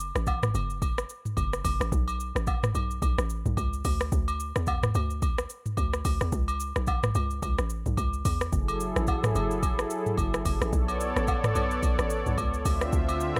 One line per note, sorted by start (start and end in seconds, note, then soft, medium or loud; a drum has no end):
0.00 0.12 F#1 loud
0.00 shaker loud
0.15 0.52 A1 loud
0.15 cross-stick loud
0.15 shaker soft
0.26 kick loud
0.26 high agogo medium
0.26 low woodblock medium
0.26 shaker medium
0.43 cross-stick loud
0.43 mid tom loud
0.43 shaker medium
0.54 1.06 F#1 medium
0.54 high agogo medium
0.54 shaker medium
0.70 shaker medium
0.82 kick loud
0.82 high agogo medium
0.82 shaker medium
0.98 cross-stick loud
0.98 shaker medium
1.09 shaker medium
1.25 mid tom medium
1.25 shaker soft
1.37 1.63 F#1 medium
1.37 kick medium
1.37 high agogo medium
1.37 shaker medium
1.53 cross-stick medium
1.53 shaker medium
1.65 1.79 F#1 medium
1.65 kick medium
1.65 open hi-hat medium
1.65 high agogo medium
1.65 shaker loud
1.80 1.91 A1 medium
1.80 cross-stick loud
1.80 shaker medium
1.92 2.32 B1 loud
1.92 kick loud
1.92 shaker medium
2.08 high agogo medium
2.08 shaker medium
2.20 shaker loud
2.35 2.72 A1 medium
2.35 cross-stick loud
2.35 shaker soft
2.47 kick loud
2.47 high agogo medium
2.47 low woodblock medium
2.47 shaker medium
2.63 cross-stick loud
2.63 mid tom loud
2.63 shaker medium
2.75 3.00 B1 medium
2.75 high agogo medium
2.75 shaker medium
2.91 shaker medium
3.02 3.17 B1 loud
3.02 kick loud
3.02 high agogo medium
3.02 shaker medium
3.18 3.44 A1 loud
3.18 cross-stick loud
3.18 shaker medium
3.30 shaker medium
3.46 3.56 B1 medium
3.46 mid tom medium
3.46 shaker medium
3.57 3.83 C#2 loud
3.57 kick loud
3.57 high agogo medium
3.57 shaker medium
3.73 shaker medium
3.85 4.10 D2 loud
3.85 kick loud
3.85 open hi-hat medium
3.85 high agogo medium
3.85 shaker loud
4.01 cross-stick loud
4.01 shaker medium
4.12 4.53 D2 loud
4.12 kick loud
4.12 shaker medium
4.28 high agogo medium
4.28 shaker medium
4.40 shaker loud
4.56 4.92 E2 medium
4.56 cross-stick loud
4.56 shaker soft
4.67 kick loud
4.67 high agogo medium
4.67 low woodblock medium
4.67 shaker medium
4.83 cross-stick loud
4.83 mid tom loud
4.83 shaker medium
4.95 5.46 D2 loud
4.95 high agogo medium
4.95 shaker medium
5.10 shaker medium
5.22 kick loud
5.22 high agogo medium
5.22 shaker medium
5.38 cross-stick loud
5.38 shaker medium
5.50 shaker medium
5.66 mid tom medium
5.66 shaker medium
5.77 6.03 D2 loud
5.77 kick loud
5.77 high agogo medium
5.77 shaker medium
5.93 cross-stick loud
5.93 shaker medium
6.05 6.20 D2 medium
6.05 kick medium
6.05 open hi-hat medium
6.05 high agogo medium
6.05 shaker loud
6.21 6.32 E2 medium
6.21 cross-stick medium
6.21 shaker medium
6.32 6.73 C#2 loud
6.32 kick loud
6.32 shaker medium
6.48 high agogo medium
6.48 shaker medium
6.60 shaker loud
6.76 7.12 B1 medium
6.76 cross-stick loud
6.76 shaker soft
6.87 kick loud
6.87 high agogo medium
6.87 low woodblock medium
6.87 shaker medium
7.03 cross-stick loud
7.03 mid tom loud
7.03 shaker medium
7.15 7.41 C#2 medium
7.15 high agogo medium
7.15 shaker medium
7.31 shaker medium
7.42 7.57 C#2 loud
7.42 kick loud
7.42 high agogo medium
7.42 shaker medium
7.58 7.84 A1 medium
7.58 cross-stick loud
7.58 shaker medium
7.70 shaker loud
7.86 7.97 B1 medium
7.86 mid tom medium
7.86 shaker soft
7.97 8.23 C#2 loud
7.97 kick loud
7.97 high agogo medium
7.97 shaker medium
8.13 shaker medium
8.25 8.51 E2 medium
8.25 kick medium
8.25 open hi-hat medium
8.25 high agogo medium
8.25 shaker loud
8.41 cross-stick loud
8.41 shaker medium
8.53 8.93 F#1 loud
8.53 10.71 F#3 medium
8.53 10.71 E4 medium
8.53 10.71 G#4 medium
8.53 10.71 A4 medium
8.53 kick loud
8.53 shaker medium
8.68 high agogo medium
8.68 shaker medium
8.80 shaker loud
8.96 9.32 A1 loud
8.96 cross-stick loud
8.96 shaker soft
9.07 kick loud
9.07 high agogo medium
9.07 low woodblock medium
9.07 shaker medium
9.23 cross-stick loud
9.23 mid tom loud
9.23 shaker medium
9.35 9.86 F#1 loud
9.35 high agogo medium
9.35 shaker medium
9.51 shaker medium
9.63 kick loud
9.63 high agogo medium
9.63 shaker medium
9.79 cross-stick loud
9.79 shaker medium
9.90 shaker loud
10.06 mid tom medium
10.06 shaker medium
10.17 10.43 F#1 medium
10.17 kick medium
10.17 high agogo medium
10.17 shaker medium
10.34 cross-stick loud
10.34 shaker medium
10.45 10.60 F#1 medium
10.45 kick loud
10.45 open hi-hat medium
10.45 high agogo medium
10.45 shaker loud
10.61 10.72 A1 loud
10.61 cross-stick medium
10.61 shaker medium
10.73 11.13 B1 loud
10.73 12.64 B3 medium
10.73 12.64 A4 medium
10.73 12.64 C#5 medium
10.73 12.64 D5 medium
10.73 kick loud
10.73 shaker medium
10.88 high agogo medium
10.88 shaker medium
11.00 shaker loud
11.16 11.53 A1 medium
11.16 cross-stick loud
11.16 shaker soft
11.27 kick loud
11.27 high agogo medium
11.27 low woodblock medium
11.27 shaker medium
11.44 cross-stick loud
11.44 mid tom loud
11.44 shaker medium
11.55 11.81 B1 medium
11.55 high agogo medium
11.55 shaker medium
11.71 shaker medium
11.83 11.98 B1 loud
11.83 kick loud
11.83 high agogo medium
11.83 shaker medium
11.99 12.24 A1 loud
11.99 cross-stick loud
11.99 shaker medium
12.10 shaker loud
12.26 12.37 B1 medium
12.26 mid tom medium
12.26 shaker medium
12.38 12.63 C#2 medium
12.38 kick loud
12.38 high agogo medium
12.38 shaker medium
12.54 shaker medium
12.65 12.91 D2 loud
12.65 13.40 D3 medium
12.65 13.40 C4 medium
12.65 13.40 F4 medium
12.65 13.40 E5 medium
12.65 kick medium
12.65 open hi-hat medium
12.65 high agogo medium
12.65 shaker loud
12.81 cross-stick loud
12.81 shaker medium
12.93 13.33 D2 loud
12.93 kick loud
12.93 shaker medium
13.09 high agogo medium
13.09 shaker medium
13.20 shaker loud
13.36 13.40 E2 medium
13.36 cross-stick loud
13.36 shaker soft